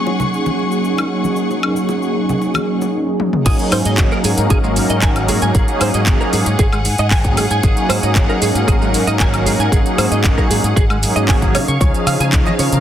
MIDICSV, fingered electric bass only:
0, 0, Header, 1, 2, 480
1, 0, Start_track
1, 0, Tempo, 521739
1, 1264, Time_signature, 4, 2, 24, 8
1, 11777, End_track
2, 0, Start_track
2, 0, Title_t, "Fingered electric bass"
2, 0, Program_c, 0, 33
2, 3183, Note_on_c, 0, 32, 97
2, 3265, Note_off_c, 0, 32, 0
2, 3422, Note_on_c, 0, 44, 94
2, 3504, Note_off_c, 0, 44, 0
2, 3545, Note_on_c, 0, 44, 95
2, 3662, Note_on_c, 0, 32, 81
2, 3676, Note_off_c, 0, 44, 0
2, 3744, Note_off_c, 0, 32, 0
2, 3901, Note_on_c, 0, 44, 80
2, 3984, Note_off_c, 0, 44, 0
2, 4027, Note_on_c, 0, 44, 80
2, 4104, Note_off_c, 0, 44, 0
2, 4144, Note_on_c, 0, 32, 86
2, 4385, Note_on_c, 0, 44, 81
2, 4399, Note_off_c, 0, 32, 0
2, 4465, Note_off_c, 0, 44, 0
2, 4504, Note_on_c, 0, 44, 84
2, 4624, Note_on_c, 0, 32, 101
2, 4638, Note_off_c, 0, 44, 0
2, 4863, Note_on_c, 0, 44, 99
2, 4877, Note_off_c, 0, 32, 0
2, 4945, Note_off_c, 0, 44, 0
2, 4986, Note_on_c, 0, 44, 83
2, 5063, Note_off_c, 0, 44, 0
2, 5103, Note_on_c, 0, 32, 97
2, 5185, Note_off_c, 0, 32, 0
2, 5343, Note_on_c, 0, 44, 94
2, 5425, Note_off_c, 0, 44, 0
2, 5467, Note_on_c, 0, 44, 97
2, 5584, Note_on_c, 0, 32, 83
2, 5597, Note_off_c, 0, 44, 0
2, 5665, Note_off_c, 0, 32, 0
2, 5824, Note_on_c, 0, 44, 84
2, 5905, Note_off_c, 0, 44, 0
2, 5946, Note_on_c, 0, 44, 84
2, 6023, Note_off_c, 0, 44, 0
2, 6063, Note_on_c, 0, 32, 86
2, 6305, Note_on_c, 0, 44, 81
2, 6319, Note_off_c, 0, 32, 0
2, 6385, Note_off_c, 0, 44, 0
2, 6428, Note_on_c, 0, 44, 87
2, 6545, Note_on_c, 0, 32, 105
2, 6559, Note_off_c, 0, 44, 0
2, 6783, Note_on_c, 0, 44, 98
2, 6797, Note_off_c, 0, 32, 0
2, 6864, Note_off_c, 0, 44, 0
2, 6904, Note_on_c, 0, 44, 82
2, 6983, Note_off_c, 0, 44, 0
2, 7024, Note_on_c, 0, 32, 98
2, 7105, Note_off_c, 0, 32, 0
2, 7260, Note_on_c, 0, 44, 95
2, 7343, Note_off_c, 0, 44, 0
2, 7387, Note_on_c, 0, 44, 93
2, 7503, Note_on_c, 0, 32, 83
2, 7516, Note_off_c, 0, 44, 0
2, 7584, Note_off_c, 0, 32, 0
2, 7744, Note_on_c, 0, 44, 85
2, 7825, Note_off_c, 0, 44, 0
2, 7864, Note_on_c, 0, 44, 82
2, 7942, Note_off_c, 0, 44, 0
2, 7984, Note_on_c, 0, 32, 88
2, 8219, Note_on_c, 0, 44, 80
2, 8233, Note_off_c, 0, 32, 0
2, 8303, Note_off_c, 0, 44, 0
2, 8344, Note_on_c, 0, 44, 85
2, 8464, Note_on_c, 0, 32, 99
2, 8478, Note_off_c, 0, 44, 0
2, 8702, Note_on_c, 0, 44, 102
2, 8716, Note_off_c, 0, 32, 0
2, 8784, Note_off_c, 0, 44, 0
2, 8824, Note_on_c, 0, 44, 84
2, 8902, Note_off_c, 0, 44, 0
2, 8943, Note_on_c, 0, 32, 100
2, 9024, Note_off_c, 0, 32, 0
2, 9181, Note_on_c, 0, 44, 94
2, 9263, Note_off_c, 0, 44, 0
2, 9303, Note_on_c, 0, 44, 91
2, 9423, Note_on_c, 0, 32, 82
2, 9437, Note_off_c, 0, 44, 0
2, 9505, Note_off_c, 0, 32, 0
2, 9662, Note_on_c, 0, 44, 81
2, 9744, Note_off_c, 0, 44, 0
2, 9784, Note_on_c, 0, 44, 78
2, 9862, Note_off_c, 0, 44, 0
2, 9905, Note_on_c, 0, 32, 85
2, 10145, Note_on_c, 0, 44, 83
2, 10159, Note_off_c, 0, 32, 0
2, 10226, Note_off_c, 0, 44, 0
2, 10267, Note_on_c, 0, 44, 84
2, 10383, Note_on_c, 0, 32, 99
2, 10397, Note_off_c, 0, 44, 0
2, 10626, Note_on_c, 0, 49, 97
2, 10640, Note_off_c, 0, 32, 0
2, 10706, Note_off_c, 0, 49, 0
2, 10747, Note_on_c, 0, 49, 78
2, 10824, Note_off_c, 0, 49, 0
2, 10864, Note_on_c, 0, 37, 100
2, 10945, Note_off_c, 0, 37, 0
2, 11099, Note_on_c, 0, 49, 96
2, 11182, Note_off_c, 0, 49, 0
2, 11224, Note_on_c, 0, 49, 95
2, 11344, Note_on_c, 0, 37, 84
2, 11357, Note_off_c, 0, 49, 0
2, 11425, Note_off_c, 0, 37, 0
2, 11582, Note_on_c, 0, 49, 77
2, 11664, Note_off_c, 0, 49, 0
2, 11705, Note_on_c, 0, 49, 80
2, 11777, Note_off_c, 0, 49, 0
2, 11777, End_track
0, 0, End_of_file